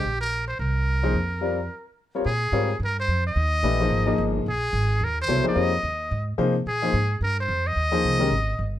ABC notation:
X:1
M:4/4
L:1/8
Q:"Swing" 1/4=218
K:Cm
V:1 name="Muted trumpet"
G B2 c B4- | B6 z2 | [K:Bbdor] A4 B c2 e- | e6- e z |
A4 B c2 e- | e4- e z3 | A4 B c2 e- | e6- e z |]
V:2 name="Upright piano"
z6 z [F,B,EAc] | z2 [G,CFBd] z4 [G,CFB_d] | [K:Bbdor] z2 [G,CFBd] z4 z | z2 [=E,=A,=DG_c] [F,B,_E_A=c]2 [F,B,EAe]3 |
z6 [_G,_C=E=Ad] [F,B,_E_A=c] | [G,CFBd] z4 z [F,B,EAc] z | z [F,B,EAc] z6 | z [F,B,EAc]2 [E,A,DGB] z4 |]
V:3 name="Upright bass" clef=bass
B,,,4 C,,4 | F,,4 z4 | [K:Bbdor] B,,2 A,,2 G,,2 F,,2 | E,,2 B,,,2 A,,,2 G,,,2 |
B,,,2 A,,,2 E,,2 C,, z | F,,2 E,,2 A,,2 C,2 | B,,2 A,,2 G,,2 F,,2 | E,,2 C,,2 A,,,2 G,,,2 |]